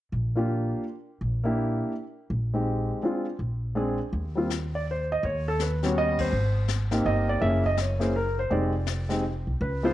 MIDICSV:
0, 0, Header, 1, 4, 480
1, 0, Start_track
1, 0, Key_signature, -3, "major"
1, 0, Tempo, 364520
1, 1122, Time_signature, 3, 2, 24, 8
1, 13082, End_track
2, 0, Start_track
2, 0, Title_t, "Grand piano"
2, 0, Program_c, 0, 0
2, 468, Note_on_c, 0, 58, 54
2, 477, Note_on_c, 0, 62, 48
2, 486, Note_on_c, 0, 65, 50
2, 490, Note_on_c, 0, 67, 55
2, 1087, Note_off_c, 0, 58, 0
2, 1092, Note_off_c, 0, 62, 0
2, 1096, Note_off_c, 0, 65, 0
2, 1098, Note_off_c, 0, 67, 0
2, 1890, Note_on_c, 0, 58, 54
2, 1902, Note_on_c, 0, 62, 50
2, 1910, Note_on_c, 0, 64, 57
2, 1914, Note_on_c, 0, 67, 57
2, 2519, Note_off_c, 0, 58, 0
2, 2524, Note_off_c, 0, 62, 0
2, 2528, Note_off_c, 0, 64, 0
2, 2530, Note_off_c, 0, 67, 0
2, 3338, Note_on_c, 0, 56, 46
2, 3341, Note_on_c, 0, 60, 40
2, 3347, Note_on_c, 0, 63, 44
2, 3357, Note_on_c, 0, 67, 55
2, 3963, Note_off_c, 0, 56, 0
2, 3964, Note_off_c, 0, 60, 0
2, 3967, Note_off_c, 0, 63, 0
2, 3972, Note_off_c, 0, 67, 0
2, 3988, Note_on_c, 0, 56, 55
2, 3994, Note_on_c, 0, 60, 49
2, 4003, Note_on_c, 0, 62, 50
2, 4018, Note_on_c, 0, 65, 58
2, 4272, Note_off_c, 0, 56, 0
2, 4275, Note_off_c, 0, 60, 0
2, 4279, Note_off_c, 0, 62, 0
2, 4287, Note_off_c, 0, 65, 0
2, 4940, Note_on_c, 0, 56, 57
2, 4948, Note_on_c, 0, 60, 55
2, 4953, Note_on_c, 0, 62, 49
2, 4967, Note_on_c, 0, 68, 63
2, 5228, Note_off_c, 0, 56, 0
2, 5232, Note_off_c, 0, 60, 0
2, 5234, Note_off_c, 0, 62, 0
2, 5241, Note_off_c, 0, 68, 0
2, 5733, Note_on_c, 0, 55, 49
2, 5749, Note_on_c, 0, 58, 45
2, 5750, Note_on_c, 0, 60, 51
2, 5764, Note_on_c, 0, 65, 56
2, 5898, Note_off_c, 0, 55, 0
2, 5906, Note_off_c, 0, 58, 0
2, 5907, Note_off_c, 0, 60, 0
2, 5913, Note_off_c, 0, 65, 0
2, 6256, Note_on_c, 0, 74, 67
2, 6412, Note_off_c, 0, 74, 0
2, 6464, Note_on_c, 0, 72, 68
2, 6733, Note_off_c, 0, 72, 0
2, 6743, Note_on_c, 0, 75, 76
2, 6896, Note_off_c, 0, 75, 0
2, 6914, Note_on_c, 0, 73, 68
2, 7197, Note_off_c, 0, 73, 0
2, 7218, Note_on_c, 0, 69, 84
2, 7373, Note_off_c, 0, 69, 0
2, 7401, Note_on_c, 0, 71, 54
2, 7673, Note_on_c, 0, 55, 60
2, 7681, Note_off_c, 0, 71, 0
2, 7687, Note_on_c, 0, 59, 53
2, 7689, Note_on_c, 0, 61, 57
2, 7694, Note_on_c, 0, 73, 59
2, 7699, Note_on_c, 0, 66, 72
2, 7851, Note_off_c, 0, 73, 0
2, 7873, Note_on_c, 0, 75, 94
2, 8157, Note_off_c, 0, 75, 0
2, 8170, Note_on_c, 0, 72, 81
2, 8291, Note_off_c, 0, 55, 0
2, 8298, Note_off_c, 0, 59, 0
2, 8299, Note_off_c, 0, 61, 0
2, 8304, Note_off_c, 0, 66, 0
2, 8769, Note_off_c, 0, 72, 0
2, 9099, Note_on_c, 0, 58, 61
2, 9107, Note_on_c, 0, 60, 57
2, 9109, Note_on_c, 0, 63, 57
2, 9124, Note_on_c, 0, 67, 66
2, 9295, Note_on_c, 0, 75, 88
2, 9588, Note_off_c, 0, 75, 0
2, 9603, Note_on_c, 0, 74, 75
2, 9724, Note_off_c, 0, 58, 0
2, 9728, Note_off_c, 0, 60, 0
2, 9729, Note_off_c, 0, 63, 0
2, 9737, Note_off_c, 0, 67, 0
2, 9747, Note_on_c, 0, 58, 59
2, 9754, Note_on_c, 0, 61, 53
2, 9760, Note_on_c, 0, 64, 49
2, 9764, Note_on_c, 0, 68, 57
2, 9764, Note_on_c, 0, 76, 77
2, 9766, Note_off_c, 0, 74, 0
2, 10032, Note_off_c, 0, 58, 0
2, 10036, Note_off_c, 0, 61, 0
2, 10038, Note_off_c, 0, 64, 0
2, 10041, Note_off_c, 0, 68, 0
2, 10062, Note_off_c, 0, 76, 0
2, 10086, Note_on_c, 0, 75, 80
2, 10247, Note_off_c, 0, 75, 0
2, 10274, Note_on_c, 0, 73, 53
2, 10520, Note_on_c, 0, 61, 55
2, 10521, Note_on_c, 0, 58, 56
2, 10531, Note_on_c, 0, 64, 45
2, 10542, Note_on_c, 0, 68, 62
2, 10557, Note_on_c, 0, 72, 64
2, 10558, Note_off_c, 0, 73, 0
2, 10692, Note_off_c, 0, 61, 0
2, 10693, Note_off_c, 0, 58, 0
2, 10697, Note_off_c, 0, 64, 0
2, 10703, Note_off_c, 0, 68, 0
2, 10722, Note_off_c, 0, 72, 0
2, 10745, Note_on_c, 0, 70, 72
2, 11033, Note_off_c, 0, 70, 0
2, 11048, Note_on_c, 0, 72, 75
2, 11196, Note_on_c, 0, 60, 49
2, 11199, Note_on_c, 0, 56, 57
2, 11203, Note_on_c, 0, 63, 58
2, 11208, Note_off_c, 0, 72, 0
2, 11211, Note_on_c, 0, 67, 60
2, 11218, Note_on_c, 0, 74, 61
2, 11476, Note_off_c, 0, 60, 0
2, 11478, Note_off_c, 0, 56, 0
2, 11480, Note_off_c, 0, 63, 0
2, 11484, Note_off_c, 0, 67, 0
2, 11945, Note_off_c, 0, 74, 0
2, 11970, Note_on_c, 0, 56, 56
2, 11981, Note_on_c, 0, 60, 51
2, 11995, Note_on_c, 0, 63, 47
2, 11995, Note_on_c, 0, 67, 58
2, 12137, Note_off_c, 0, 56, 0
2, 12142, Note_off_c, 0, 60, 0
2, 12149, Note_off_c, 0, 63, 0
2, 12149, Note_off_c, 0, 67, 0
2, 12659, Note_on_c, 0, 71, 61
2, 12947, Note_on_c, 0, 56, 63
2, 12949, Note_off_c, 0, 71, 0
2, 12955, Note_on_c, 0, 59, 59
2, 12964, Note_on_c, 0, 63, 51
2, 12968, Note_on_c, 0, 65, 70
2, 12969, Note_on_c, 0, 72, 83
2, 13082, Note_off_c, 0, 56, 0
2, 13082, Note_off_c, 0, 59, 0
2, 13082, Note_off_c, 0, 63, 0
2, 13082, Note_off_c, 0, 65, 0
2, 13082, Note_off_c, 0, 72, 0
2, 13082, End_track
3, 0, Start_track
3, 0, Title_t, "Upright bass"
3, 0, Program_c, 1, 32
3, 164, Note_on_c, 1, 34, 64
3, 932, Note_off_c, 1, 34, 0
3, 1593, Note_on_c, 1, 34, 69
3, 2366, Note_off_c, 1, 34, 0
3, 3029, Note_on_c, 1, 34, 70
3, 3805, Note_off_c, 1, 34, 0
3, 4465, Note_on_c, 1, 34, 67
3, 5243, Note_off_c, 1, 34, 0
3, 5434, Note_on_c, 1, 39, 76
3, 6827, Note_off_c, 1, 39, 0
3, 6889, Note_on_c, 1, 39, 80
3, 8274, Note_off_c, 1, 39, 0
3, 8327, Note_on_c, 1, 32, 78
3, 9233, Note_off_c, 1, 32, 0
3, 9287, Note_on_c, 1, 31, 70
3, 9732, Note_off_c, 1, 31, 0
3, 9767, Note_on_c, 1, 30, 81
3, 11153, Note_off_c, 1, 30, 0
3, 11204, Note_on_c, 1, 29, 74
3, 12418, Note_off_c, 1, 29, 0
3, 12470, Note_on_c, 1, 36, 54
3, 12632, Note_off_c, 1, 36, 0
3, 12650, Note_on_c, 1, 37, 79
3, 13082, Note_off_c, 1, 37, 0
3, 13082, End_track
4, 0, Start_track
4, 0, Title_t, "Drums"
4, 5445, Note_on_c, 9, 25, 42
4, 5927, Note_on_c, 9, 44, 55
4, 5931, Note_on_c, 9, 38, 46
4, 6059, Note_off_c, 9, 44, 0
4, 6063, Note_off_c, 9, 38, 0
4, 6893, Note_off_c, 9, 25, 0
4, 6893, Note_on_c, 9, 25, 44
4, 7367, Note_on_c, 9, 44, 52
4, 7371, Note_on_c, 9, 38, 49
4, 7499, Note_off_c, 9, 44, 0
4, 7503, Note_off_c, 9, 38, 0
4, 7673, Note_on_c, 9, 38, 32
4, 7805, Note_off_c, 9, 38, 0
4, 8146, Note_on_c, 9, 51, 66
4, 8148, Note_on_c, 9, 36, 75
4, 8277, Note_off_c, 9, 51, 0
4, 8280, Note_off_c, 9, 36, 0
4, 8322, Note_off_c, 9, 25, 0
4, 8322, Note_on_c, 9, 25, 42
4, 8798, Note_on_c, 9, 44, 57
4, 8802, Note_on_c, 9, 38, 50
4, 8929, Note_off_c, 9, 44, 0
4, 8933, Note_off_c, 9, 38, 0
4, 9102, Note_on_c, 9, 38, 34
4, 9234, Note_off_c, 9, 38, 0
4, 9749, Note_off_c, 9, 25, 0
4, 9749, Note_on_c, 9, 25, 43
4, 10059, Note_on_c, 9, 36, 37
4, 10191, Note_off_c, 9, 36, 0
4, 10234, Note_on_c, 9, 44, 52
4, 10238, Note_on_c, 9, 38, 54
4, 10366, Note_off_c, 9, 44, 0
4, 10370, Note_off_c, 9, 38, 0
4, 10546, Note_on_c, 9, 38, 30
4, 10677, Note_off_c, 9, 38, 0
4, 11200, Note_off_c, 9, 25, 0
4, 11200, Note_on_c, 9, 25, 47
4, 11672, Note_on_c, 9, 44, 51
4, 11676, Note_on_c, 9, 38, 53
4, 11804, Note_off_c, 9, 44, 0
4, 11808, Note_off_c, 9, 38, 0
4, 11981, Note_on_c, 9, 38, 33
4, 12113, Note_off_c, 9, 38, 0
4, 12644, Note_off_c, 9, 25, 0
4, 12644, Note_on_c, 9, 25, 49
4, 13082, Note_off_c, 9, 25, 0
4, 13082, End_track
0, 0, End_of_file